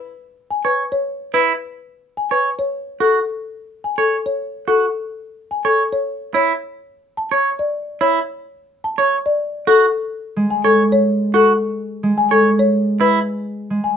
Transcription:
0, 0, Header, 1, 4, 480
1, 0, Start_track
1, 0, Key_signature, 3, "major"
1, 0, Tempo, 555556
1, 1158, Time_signature, 3, 2, 24, 8
1, 12069, End_track
2, 0, Start_track
2, 0, Title_t, "Marimba"
2, 0, Program_c, 0, 12
2, 436, Note_on_c, 0, 80, 64
2, 559, Note_on_c, 0, 71, 51
2, 593, Note_off_c, 0, 80, 0
2, 714, Note_off_c, 0, 71, 0
2, 795, Note_on_c, 0, 73, 65
2, 953, Note_off_c, 0, 73, 0
2, 1155, Note_on_c, 0, 71, 60
2, 1313, Note_off_c, 0, 71, 0
2, 1877, Note_on_c, 0, 80, 60
2, 1997, Note_on_c, 0, 71, 45
2, 2034, Note_off_c, 0, 80, 0
2, 2154, Note_off_c, 0, 71, 0
2, 2236, Note_on_c, 0, 73, 59
2, 2393, Note_off_c, 0, 73, 0
2, 2596, Note_on_c, 0, 69, 57
2, 2753, Note_off_c, 0, 69, 0
2, 3319, Note_on_c, 0, 80, 61
2, 3438, Note_on_c, 0, 69, 45
2, 3474, Note_off_c, 0, 80, 0
2, 3594, Note_off_c, 0, 69, 0
2, 3680, Note_on_c, 0, 73, 56
2, 3835, Note_off_c, 0, 73, 0
2, 4041, Note_on_c, 0, 69, 57
2, 4195, Note_off_c, 0, 69, 0
2, 4760, Note_on_c, 0, 80, 61
2, 4880, Note_on_c, 0, 69, 47
2, 4915, Note_off_c, 0, 80, 0
2, 5035, Note_off_c, 0, 69, 0
2, 5119, Note_on_c, 0, 73, 62
2, 5275, Note_off_c, 0, 73, 0
2, 5483, Note_on_c, 0, 73, 61
2, 5636, Note_off_c, 0, 73, 0
2, 6198, Note_on_c, 0, 81, 63
2, 6321, Note_on_c, 0, 73, 52
2, 6354, Note_off_c, 0, 81, 0
2, 6475, Note_off_c, 0, 73, 0
2, 6559, Note_on_c, 0, 74, 64
2, 6714, Note_off_c, 0, 74, 0
2, 6921, Note_on_c, 0, 73, 67
2, 7075, Note_off_c, 0, 73, 0
2, 7639, Note_on_c, 0, 81, 72
2, 7764, Note_on_c, 0, 73, 55
2, 7794, Note_off_c, 0, 81, 0
2, 7916, Note_off_c, 0, 73, 0
2, 7999, Note_on_c, 0, 74, 72
2, 8154, Note_off_c, 0, 74, 0
2, 8357, Note_on_c, 0, 69, 70
2, 8514, Note_off_c, 0, 69, 0
2, 9076, Note_on_c, 0, 80, 70
2, 9196, Note_on_c, 0, 69, 57
2, 9233, Note_off_c, 0, 80, 0
2, 9353, Note_off_c, 0, 69, 0
2, 9437, Note_on_c, 0, 73, 77
2, 9594, Note_off_c, 0, 73, 0
2, 9801, Note_on_c, 0, 69, 71
2, 9955, Note_off_c, 0, 69, 0
2, 10520, Note_on_c, 0, 80, 71
2, 10640, Note_on_c, 0, 69, 58
2, 10675, Note_off_c, 0, 80, 0
2, 10795, Note_off_c, 0, 69, 0
2, 10880, Note_on_c, 0, 73, 74
2, 11035, Note_off_c, 0, 73, 0
2, 11237, Note_on_c, 0, 71, 67
2, 11394, Note_off_c, 0, 71, 0
2, 11957, Note_on_c, 0, 80, 65
2, 12069, Note_off_c, 0, 80, 0
2, 12069, End_track
3, 0, Start_track
3, 0, Title_t, "Clean electric guitar"
3, 0, Program_c, 1, 27
3, 559, Note_on_c, 1, 73, 50
3, 714, Note_off_c, 1, 73, 0
3, 1157, Note_on_c, 1, 64, 62
3, 1314, Note_off_c, 1, 64, 0
3, 1997, Note_on_c, 1, 73, 49
3, 2154, Note_off_c, 1, 73, 0
3, 2595, Note_on_c, 1, 66, 56
3, 2753, Note_off_c, 1, 66, 0
3, 3439, Note_on_c, 1, 73, 45
3, 3594, Note_off_c, 1, 73, 0
3, 4040, Note_on_c, 1, 66, 55
3, 4195, Note_off_c, 1, 66, 0
3, 4880, Note_on_c, 1, 73, 50
3, 5035, Note_off_c, 1, 73, 0
3, 5480, Note_on_c, 1, 64, 58
3, 5635, Note_off_c, 1, 64, 0
3, 6320, Note_on_c, 1, 73, 50
3, 6475, Note_off_c, 1, 73, 0
3, 6920, Note_on_c, 1, 64, 64
3, 7075, Note_off_c, 1, 64, 0
3, 7759, Note_on_c, 1, 73, 57
3, 7914, Note_off_c, 1, 73, 0
3, 8357, Note_on_c, 1, 66, 69
3, 8514, Note_off_c, 1, 66, 0
3, 9198, Note_on_c, 1, 73, 57
3, 9354, Note_off_c, 1, 73, 0
3, 9797, Note_on_c, 1, 66, 73
3, 9954, Note_off_c, 1, 66, 0
3, 10637, Note_on_c, 1, 73, 55
3, 10794, Note_off_c, 1, 73, 0
3, 11236, Note_on_c, 1, 64, 69
3, 11393, Note_off_c, 1, 64, 0
3, 12069, End_track
4, 0, Start_track
4, 0, Title_t, "Harp"
4, 0, Program_c, 2, 46
4, 8955, Note_on_c, 2, 56, 63
4, 10385, Note_off_c, 2, 56, 0
4, 10395, Note_on_c, 2, 56, 59
4, 11829, Note_off_c, 2, 56, 0
4, 11839, Note_on_c, 2, 56, 54
4, 12069, Note_off_c, 2, 56, 0
4, 12069, End_track
0, 0, End_of_file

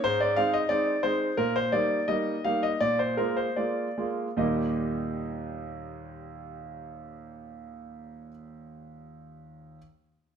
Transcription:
0, 0, Header, 1, 2, 480
1, 0, Start_track
1, 0, Key_signature, -3, "major"
1, 0, Tempo, 681818
1, 967, Time_signature, 4, 2, 24, 8
1, 1463, Tempo, 742574
1, 2423, Tempo, 796813
1, 6517, End_track
2, 0, Start_track
2, 0, Title_t, "Grand piano"
2, 0, Program_c, 0, 0
2, 27, Note_on_c, 0, 72, 84
2, 28, Note_on_c, 0, 44, 52
2, 139, Note_off_c, 0, 72, 0
2, 144, Note_on_c, 0, 74, 72
2, 249, Note_off_c, 0, 44, 0
2, 256, Note_off_c, 0, 74, 0
2, 257, Note_on_c, 0, 77, 81
2, 260, Note_on_c, 0, 56, 43
2, 264, Note_on_c, 0, 60, 42
2, 265, Note_on_c, 0, 63, 42
2, 371, Note_off_c, 0, 77, 0
2, 377, Note_on_c, 0, 75, 70
2, 426, Note_off_c, 0, 56, 0
2, 428, Note_off_c, 0, 60, 0
2, 429, Note_off_c, 0, 63, 0
2, 485, Note_on_c, 0, 74, 72
2, 488, Note_on_c, 0, 56, 39
2, 490, Note_off_c, 0, 75, 0
2, 493, Note_on_c, 0, 60, 39
2, 496, Note_on_c, 0, 63, 45
2, 659, Note_off_c, 0, 56, 0
2, 662, Note_off_c, 0, 60, 0
2, 664, Note_off_c, 0, 63, 0
2, 700, Note_off_c, 0, 74, 0
2, 725, Note_on_c, 0, 72, 72
2, 729, Note_on_c, 0, 60, 38
2, 730, Note_on_c, 0, 56, 39
2, 734, Note_on_c, 0, 63, 39
2, 902, Note_off_c, 0, 56, 0
2, 902, Note_off_c, 0, 60, 0
2, 905, Note_off_c, 0, 63, 0
2, 967, Note_off_c, 0, 72, 0
2, 968, Note_on_c, 0, 70, 70
2, 969, Note_on_c, 0, 46, 52
2, 1089, Note_off_c, 0, 70, 0
2, 1096, Note_on_c, 0, 72, 72
2, 1207, Note_off_c, 0, 46, 0
2, 1213, Note_on_c, 0, 74, 69
2, 1216, Note_off_c, 0, 72, 0
2, 1218, Note_on_c, 0, 55, 38
2, 1218, Note_on_c, 0, 58, 43
2, 1222, Note_on_c, 0, 63, 43
2, 1396, Note_off_c, 0, 55, 0
2, 1396, Note_off_c, 0, 58, 0
2, 1398, Note_off_c, 0, 63, 0
2, 1438, Note_off_c, 0, 74, 0
2, 1463, Note_on_c, 0, 75, 64
2, 1467, Note_on_c, 0, 55, 40
2, 1467, Note_on_c, 0, 58, 38
2, 1473, Note_on_c, 0, 63, 40
2, 1633, Note_off_c, 0, 55, 0
2, 1633, Note_off_c, 0, 58, 0
2, 1636, Note_off_c, 0, 63, 0
2, 1695, Note_off_c, 0, 75, 0
2, 1700, Note_on_c, 0, 77, 70
2, 1702, Note_on_c, 0, 55, 36
2, 1705, Note_on_c, 0, 58, 36
2, 1707, Note_on_c, 0, 63, 42
2, 1815, Note_off_c, 0, 77, 0
2, 1819, Note_on_c, 0, 75, 63
2, 1869, Note_off_c, 0, 55, 0
2, 1871, Note_off_c, 0, 58, 0
2, 1873, Note_off_c, 0, 63, 0
2, 1933, Note_on_c, 0, 74, 77
2, 1934, Note_off_c, 0, 75, 0
2, 1934, Note_on_c, 0, 46, 49
2, 2052, Note_off_c, 0, 74, 0
2, 2053, Note_on_c, 0, 72, 61
2, 2167, Note_off_c, 0, 46, 0
2, 2171, Note_on_c, 0, 70, 56
2, 2174, Note_off_c, 0, 72, 0
2, 2175, Note_on_c, 0, 56, 34
2, 2177, Note_on_c, 0, 58, 30
2, 2180, Note_on_c, 0, 65, 37
2, 2295, Note_on_c, 0, 72, 56
2, 2296, Note_off_c, 0, 70, 0
2, 2355, Note_off_c, 0, 56, 0
2, 2356, Note_off_c, 0, 58, 0
2, 2359, Note_off_c, 0, 65, 0
2, 2423, Note_off_c, 0, 72, 0
2, 2423, Note_on_c, 0, 74, 48
2, 2426, Note_on_c, 0, 56, 30
2, 2428, Note_on_c, 0, 58, 31
2, 2430, Note_on_c, 0, 65, 30
2, 2603, Note_off_c, 0, 56, 0
2, 2604, Note_off_c, 0, 58, 0
2, 2606, Note_off_c, 0, 65, 0
2, 2671, Note_on_c, 0, 56, 30
2, 2672, Note_on_c, 0, 58, 32
2, 2676, Note_on_c, 0, 65, 36
2, 2718, Note_off_c, 0, 74, 0
2, 2847, Note_off_c, 0, 56, 0
2, 2847, Note_off_c, 0, 58, 0
2, 2850, Note_off_c, 0, 65, 0
2, 2907, Note_on_c, 0, 39, 45
2, 2910, Note_on_c, 0, 46, 40
2, 2910, Note_on_c, 0, 55, 36
2, 2911, Note_on_c, 0, 58, 37
2, 2912, Note_on_c, 0, 63, 35
2, 2913, Note_on_c, 0, 67, 32
2, 2913, Note_on_c, 0, 75, 45
2, 3042, Control_c, 0, 64, 127
2, 5267, Note_off_c, 0, 39, 0
2, 5270, Note_off_c, 0, 46, 0
2, 5270, Note_off_c, 0, 55, 0
2, 5271, Note_off_c, 0, 58, 0
2, 5273, Note_off_c, 0, 63, 0
2, 5273, Note_off_c, 0, 75, 0
2, 5274, Note_off_c, 0, 67, 0
2, 6168, Control_c, 0, 64, 0
2, 6517, End_track
0, 0, End_of_file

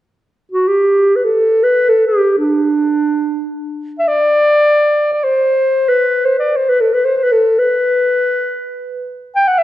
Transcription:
0, 0, Header, 1, 2, 480
1, 0, Start_track
1, 0, Tempo, 500000
1, 9247, End_track
2, 0, Start_track
2, 0, Title_t, "Clarinet"
2, 0, Program_c, 0, 71
2, 495, Note_on_c, 0, 66, 61
2, 652, Note_on_c, 0, 67, 63
2, 667, Note_off_c, 0, 66, 0
2, 1111, Note_on_c, 0, 71, 44
2, 1126, Note_off_c, 0, 67, 0
2, 1193, Note_on_c, 0, 69, 65
2, 1208, Note_off_c, 0, 71, 0
2, 1566, Note_on_c, 0, 71, 77
2, 1581, Note_off_c, 0, 69, 0
2, 1814, Note_on_c, 0, 69, 71
2, 1829, Note_off_c, 0, 71, 0
2, 1982, Note_off_c, 0, 69, 0
2, 1987, Note_on_c, 0, 67, 65
2, 2272, Note_off_c, 0, 67, 0
2, 2288, Note_on_c, 0, 62, 59
2, 3502, Note_off_c, 0, 62, 0
2, 3829, Note_on_c, 0, 76, 55
2, 3915, Note_on_c, 0, 74, 81
2, 3930, Note_off_c, 0, 76, 0
2, 4919, Note_off_c, 0, 74, 0
2, 4919, Note_on_c, 0, 74, 62
2, 5026, Note_on_c, 0, 72, 79
2, 5040, Note_off_c, 0, 74, 0
2, 5654, Note_on_c, 0, 71, 66
2, 5668, Note_off_c, 0, 72, 0
2, 6000, Note_on_c, 0, 72, 61
2, 6015, Note_off_c, 0, 71, 0
2, 6127, Note_off_c, 0, 72, 0
2, 6137, Note_on_c, 0, 74, 61
2, 6300, Note_on_c, 0, 72, 61
2, 6314, Note_off_c, 0, 74, 0
2, 6429, Note_on_c, 0, 71, 67
2, 6444, Note_off_c, 0, 72, 0
2, 6535, Note_on_c, 0, 69, 58
2, 6549, Note_off_c, 0, 71, 0
2, 6654, Note_on_c, 0, 71, 63
2, 6668, Note_off_c, 0, 69, 0
2, 6769, Note_on_c, 0, 72, 63
2, 6783, Note_off_c, 0, 71, 0
2, 6881, Note_off_c, 0, 72, 0
2, 6881, Note_on_c, 0, 72, 56
2, 6947, Note_on_c, 0, 71, 72
2, 6961, Note_off_c, 0, 72, 0
2, 7027, Note_on_c, 0, 69, 65
2, 7041, Note_off_c, 0, 71, 0
2, 7282, Note_on_c, 0, 71, 66
2, 7297, Note_off_c, 0, 69, 0
2, 8600, Note_off_c, 0, 71, 0
2, 8982, Note_on_c, 0, 79, 72
2, 9097, Note_on_c, 0, 78, 71
2, 9111, Note_off_c, 0, 79, 0
2, 9199, Note_on_c, 0, 76, 77
2, 9213, Note_off_c, 0, 78, 0
2, 9247, Note_off_c, 0, 76, 0
2, 9247, End_track
0, 0, End_of_file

